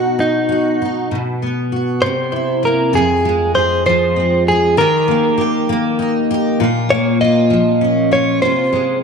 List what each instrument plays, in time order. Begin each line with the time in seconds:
Already playing: steel-string acoustic guitar B2 D#4 F#4, clean electric guitar F#4
0.19 steel-string acoustic guitar D#4, clean electric guitar D#4
0.49 steel-string acoustic guitar F#4
0.82 steel-string acoustic guitar D#4
1.11 steel-string acoustic guitar B2
1.42 steel-string acoustic guitar B3
1.72 steel-string acoustic guitar F#4
2.02 steel-string acoustic guitar C3, clean electric guitar C5
2.32 steel-string acoustic guitar E4
2.63 steel-string acoustic guitar A#3, clean electric guitar A#4
2.93 steel-string acoustic guitar F2 G#4, clean electric guitar G#4
3.25 steel-string acoustic guitar G#3
3.55 steel-string acoustic guitar G#4, clean electric guitar C5
3.86 steel-string acoustic guitar F3, clean electric guitar C5
4.16 steel-string acoustic guitar C4
4.48 steel-string acoustic guitar G#4, clean electric guitar G#4
4.77 steel-string acoustic guitar D#3 G4, clean electric guitar A#4
5.08 steel-string acoustic guitar A#3
5.38 steel-string acoustic guitar G4
5.69 steel-string acoustic guitar A#3
5.99 steel-string acoustic guitar D#4
6.31 steel-string acoustic guitar G4
6.60 steel-string acoustic guitar A#2 F4
6.90 steel-string acoustic guitar A#3, clean electric guitar C#5
7.21 steel-string acoustic guitar F4, clean electric guitar D#5
7.50 steel-string acoustic guitar F3
7.81 steel-string acoustic guitar C#4
8.11 steel-string acoustic guitar F4, clean electric guitar C#5
8.42 steel-string acoustic guitar C3 F4, clean electric guitar C5
8.72 steel-string acoustic guitar G#3